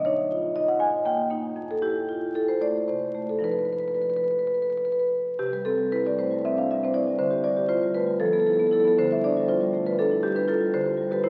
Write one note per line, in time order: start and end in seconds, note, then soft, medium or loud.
0.00 0.78 B2 medium
0.05 0.46 D#4 medium
0.05 0.54 C#5 medium
0.31 0.56 F4 medium
0.56 0.81 D#4 medium
0.56 0.69 D#5 medium
0.68 0.81 F#5 medium
0.80 1.54 G#2 medium
0.80 1.05 G#5 medium
1.05 1.29 A#3 medium
1.05 1.55 G5 loud
1.30 1.54 A#3 medium
1.30 1.54 D#4 medium
1.56 3.37 F2 medium
1.71 1.83 A4 medium
1.82 2.23 E4 medium
1.82 2.31 G4 medium
2.09 2.34 F4 medium
2.35 2.77 E4 medium
2.35 2.47 A4 medium
2.48 2.61 C5 medium
2.61 3.04 A3 medium
2.61 2.87 D5 medium
2.88 3.31 C3 medium
2.88 3.27 C5 medium
3.14 3.42 A3 medium
3.29 3.42 A4 medium
3.39 5.33 G2 medium
3.39 5.34 F3 medium
3.39 5.35 D#4 medium
3.44 3.52 B4 medium
3.52 3.59 B4 medium
3.59 3.65 B4 medium
3.65 3.73 B4 medium
3.73 3.80 B4 medium
3.80 3.88 B4 medium
3.88 3.95 B4 medium
3.95 4.02 B4 medium
4.02 4.10 B4 medium
4.10 4.16 B4 medium
4.16 4.24 B4 medium
4.24 4.31 B4 medium
4.31 4.39 B4 medium
4.39 4.47 B4 medium
4.47 4.54 B4 medium
4.54 4.62 B4 medium
4.62 4.70 B4 medium
4.70 4.77 B4 medium
4.77 4.85 B4 medium
4.85 4.92 B4 medium
4.92 4.99 B4 medium
4.99 5.08 B4 medium
5.39 7.16 C3 medium
5.39 5.52 G4 loud
5.52 5.73 G3 medium
5.52 5.66 B4 medium
5.65 5.87 C4 medium
5.65 5.90 A4 medium
5.78 5.99 G3 medium
5.92 6.13 E4 medium
5.92 6.05 B4 loud
6.05 6.26 G3 medium
6.05 6.18 D5 medium
6.18 6.31 A3 medium
6.18 6.43 C5 medium
6.31 6.51 G3 medium
6.45 6.65 C4 medium
6.45 6.57 E5 medium
6.57 6.69 D4 medium
6.57 6.70 F5 medium
6.71 6.90 G3 medium
6.71 6.82 E5 medium
6.84 7.03 C4 medium
6.84 6.96 C5 medium
6.94 7.14 E4 medium
6.94 7.18 D5 loud
7.07 7.19 G3 medium
7.19 8.18 D3 medium
7.19 7.43 C5 loud
7.30 7.51 G4 medium
7.44 7.65 G3 medium
7.44 7.69 D5 medium
7.57 7.77 G4 medium
7.68 7.90 F4 medium
7.68 7.94 C5 loud
7.83 8.03 G3 medium
7.94 8.08 A3 medium
7.94 8.20 B4 medium
8.07 8.20 G3 medium
8.20 8.95 F3 medium
8.20 8.26 A4 loud
8.26 8.33 A4 medium
8.33 8.54 B3 medium
8.33 8.40 A4 medium
8.40 8.47 A4 medium
8.47 8.68 E4 medium
8.47 8.53 A4 medium
8.53 8.60 A4 medium
8.59 8.80 B3 medium
8.59 8.67 A4 medium
8.67 8.73 A4 medium
8.71 8.92 E4 medium
8.71 8.80 A4 medium
8.80 8.88 A4 medium
8.84 8.97 B3 medium
8.84 8.94 A4 medium
8.99 10.70 D3 medium
8.99 9.11 C5 loud
9.11 9.31 G3 medium
9.11 9.24 E5 medium
9.24 9.44 D4 medium
9.24 9.48 D5 loud
9.37 9.56 G3 medium
9.48 9.69 F4 medium
9.48 9.85 C5 loud
9.61 9.81 G3 medium
9.74 9.86 A3 medium
9.85 10.06 G3 medium
9.85 9.99 B4 medium
9.99 10.19 D4 medium
9.99 10.23 A4 loud
10.11 10.24 E4 medium
10.23 10.44 G3 medium
10.23 10.36 G4 loud
10.35 10.56 D4 medium
10.35 10.49 B4 loud
10.48 10.68 F4 medium
10.48 10.73 A4 loud
10.60 10.73 G3 medium
10.74 11.29 D3 medium
10.74 11.09 C5 loud
10.86 11.06 G4 medium
10.98 11.18 G3 medium
11.11 11.29 G4 medium
11.11 11.24 B4 loud
11.24 11.29 E4 medium
11.24 11.29 C5 loud